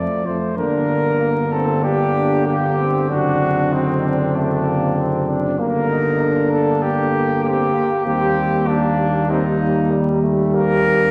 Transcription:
Already playing: F3 A3 D5
0.24 F2 F3 A3 C5
0.57 G1 D3 A#3 D4 A#4
1.20 A#3
1.52 C4 A4
1.83 D4 G4
2.45 A#3 G4
2.77 C4
3.09 F#1 C4 D4 F#4
3.73 C4 D#4
4.03 D4
4.35 A3 D4
4.66 A#3
4.97 C4
5.28 D4
5.59 G1 D3 A#3 A#4
5.90 D#4
6.21 D4
6.51 A4
6.82 G4
7.44 C4 G4
7.74 A#3
8.06 D#2 G3 C4 G4
8.68 A#3 D4
9.30 C4 D#4
9.60 A#3
9.91 G3
10.22 A3
10.54 A#3 C4 A#4

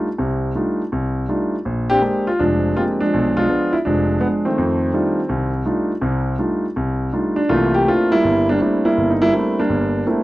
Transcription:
0.18 C2 C3
0.55 G3 A3 D4 D#4 F4
0.92 C2
1.28 G3 A3 D4 D#4 F4
1.65 A#1
1.90 C4 D4 G4
2.02 G#3 A#3 C4 D4 G4
2.27 F4
2.39 F1 F3 G#3 D4
2.77 G#3 A#3 C4 D4 F4 G4
3.00 F3 G#3 D4
3.14 B1
3.37 G#3 D4 F4
3.49 G#3 B3 D4
3.73 E4
3.85 F1 F3 G#3 D4
4.21 G#3 B3 D4
4.45 D#3 A3 C4
4.58 F2
4.94 G3 A3 D4 D#4 F4
5.29 C2
5.65 G3 A3 D4 D#4 F4
6.01 C2 C3
6.38 G3 A3 D4 D#4 F4
6.76 C2
7.13 G3 A3 D4 D#4 F4
7.36 D4
7.49 C2 E3 A3 A#3 F4
7.74 G4
7.86 A3 A#3 C4 D4 E4 F4
8.12 G3 A#3 E4
8.24 G1
8.49 G3 A#3 D4
8.60 A3 A#3 C4 D4 E4
8.85 G3 A#3 E4
8.97 G1
9.10 D#4
9.22 G3 A#3 E4
9.34 A3 A#3 C4 D4 E4
9.60 G3 A#3 D4
9.69 G1
10.07 A3 A#3 C4 D4 E4

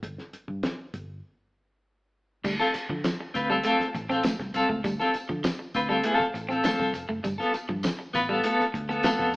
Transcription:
0.03 G1, kick, closed hi-hat
0.18 snare
0.33 muted fingered electric bass stroke, closed hi-hat
0.48 G2, kick
0.63 snare, closed hi-hat
0.94 G1, kick, closed hi-hat
2.44 D2 G3, muted clean electric guitar stroke, kick, crash, tambourine
2.60 C4 F4 A4, snare
2.74 muted fingered electric bass stroke, muted clean electric guitar stroke, closed hi-hat, tambourine
2.89 D3 F3, muted clean electric guitar stroke, kick
3.04 F3, muted clean electric guitar stroke, snare, closed hi-hat, tambourine
3.20 muted clean electric guitar stroke
3.34 D2 C4 F4 B4, kick, closed hi-hat, tambourine
3.50 G3 C4 F4 A4
3.63 A3 C4 F4 A4, closed hi-hat, tambourine
3.79 muted fingered electric bass stroke, snare
3.94 A1, muted clean electric guitar stroke, kick, closed hi-hat, tambourine
4.09 C4 F4 A4, snare
4.23 A3, muted clean electric guitar stroke, snare, closed hi-hat, tambourine
4.39 C2, muted clean electric guitar stroke, kick, snare
4.54 C2 C4 F4 A4, muted clean electric guitar stroke, closed hi-hat, tambourine
4.69 C#2 A3, kick
4.84 D2 G3, muted clean electric guitar stroke, kick, closed hi-hat, tambourine
5.00 C4 F4 A4, snare
5.14 muted fingered electric bass stroke, muted clean electric guitar stroke, closed hi-hat, tambourine
5.29 D3 F3, muted clean electric guitar stroke, kick
5.44 F3, muted clean electric guitar stroke, snare, closed hi-hat, tambourine
5.60 muted clean electric guitar stroke
5.74 D2 C4 F4 B4, kick, closed hi-hat, tambourine
5.89 G3 C4 F4 A4
6.04 A3 C4 F4 A4, closed hi-hat, tambourine
6.20 muted fingered electric bass stroke, kick, snare
6.34 A1, muted clean electric guitar stroke, closed hi-hat, tambourine
6.49 C4 F4 A4, snare
6.64 A3 C4 F4 A4, snare, closed hi-hat, tambourine
6.79 C2, kick, snare
6.94 F1, muted clean electric guitar stroke, closed hi-hat, tambourine
7.09 F#1 A3, muted clean electric guitar stroke
7.23 G1 G3, muted clean electric guitar stroke, kick, closed hi-hat, tambourine
7.38 B3 F4 A4, snare
7.53 muted clean electric guitar stroke, muted fingered electric bass stroke, closed hi-hat, tambourine
7.69 G2 F3, muted clean electric guitar stroke, kick
7.83 F3, muted clean electric guitar stroke, snare, closed hi-hat, tambourine
7.99 muted clean electric guitar stroke
8.13 A1 B3 F4 B4, kick, closed hi-hat, tambourine
8.29 G3 B3 F4 A4
8.44 A3 B3 F4 A4, closed hi-hat, tambourine
8.59 muted fingered electric bass stroke, snare
8.74 D2, muted clean electric guitar stroke, kick, closed hi-hat
8.89 B3 F4 A4, snare
9.03 A3 B3 F4 A4, snare, closed hi-hat, tambourine
9.19 F2, kick, snare

